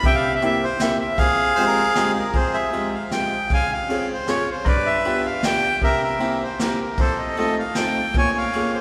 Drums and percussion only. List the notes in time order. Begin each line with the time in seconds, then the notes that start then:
0.03 kick, closed hi-hat
0.42 closed hi-hat
0.80 snare, closed hi-hat
1.18 kick, closed hi-hat
1.57 closed hi-hat
1.95 snare, closed hi-hat
2.33 kick, ride
2.73 ride
3.11 snare, ride
3.50 kick, ride
3.90 ride
4.27 snare, ride
4.66 kick, ride
5.05 ride
5.43 snare, ride
5.81 kick, ride
6.20 ride
6.59 snare, ride
6.97 kick, ride
7.37 ride
7.75 snare, ride
8.14 kick, ride
8.53 ride